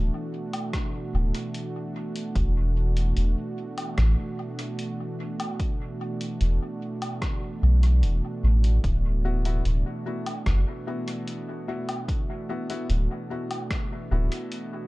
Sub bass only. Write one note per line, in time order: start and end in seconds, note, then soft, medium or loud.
0.00 0.10 D1 loud
1.14 1.32 D1 medium
2.35 3.13 E1 loud
3.17 3.35 E1 loud
3.98 4.16 A1 loud
6.41 6.59 E1 loud
7.62 8.04 B1 loud
8.03 8.21 E1 medium
8.43 8.79 A1 medium
8.84 9.61 D1 loud
9.65 9.83 D1 loud
10.46 10.64 F#1 loud
12.89 13.08 D1 loud
14.11 14.29 D1 medium